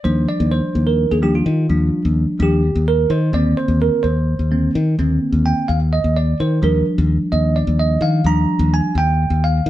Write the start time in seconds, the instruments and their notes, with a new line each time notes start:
0.04 fingered electric bass D#2, tine electric piano F3 G3 D4 C5
0.29 tine electric piano D5
0.40 fingered electric bass D#2
0.51 tine electric piano C5
0.75 fingered electric bass D#2
0.87 tine electric piano A#4
1.11 fingered electric bass D#2, tine electric piano G#4
1.22 tine electric piano F3 G3 D4 G4
1.35 tine electric piano F4
1.46 fingered electric bass D#3
1.69 fingered electric bass D#2, tine electric piano F3 G3 D4
2.05 fingered electric bass D#2
2.40 fingered electric bass D#2, tine electric piano F3 G3 D4 G4
2.75 fingered electric bass D#2
2.88 tine electric piano A#4
3.10 fingered electric bass D#3, tine electric piano C5
3.32 fingered electric bass D#2, tine electric piano D3 A#3 C4 D5
3.57 tine electric piano C5
3.68 fingered electric bass D#2
3.82 tine electric piano A#4
4.03 fingered electric bass D#2, tine electric piano C5
4.39 fingered electric bass D#2
4.51 tine electric piano D3 A#3 C4
4.75 fingered electric bass D#3
4.99 fingered electric bass D#2, tine electric piano D3 A#3 C4
5.32 fingered electric bass D#2
5.46 tine electric piano G5
5.68 fingered electric bass D#2, tine electric piano F5
5.93 tine electric piano D#5
6.04 fingered electric bass D#2
6.17 tine electric piano D5
6.40 fingered electric bass D#3, tine electric piano C5
6.62 fingered electric bass D#2, tine electric piano F3 G3 D4 A#4
6.98 fingered electric bass D#2
7.32 fingered electric bass D#2, tine electric piano D#5
7.56 tine electric piano D5
7.67 fingered electric bass D#2
7.80 tine electric piano D#5
8.01 fingered electric bass D#3, tine electric piano F5
8.24 fingered electric bass D#2, tine electric piano F3 G3 D4 A#5
8.59 fingered electric bass D#2
8.74 tine electric piano G#5
8.95 fingered electric bass D#2, tine electric piano G5
9.30 fingered electric bass D#2
9.44 tine electric piano F5
9.66 fingered electric bass D#3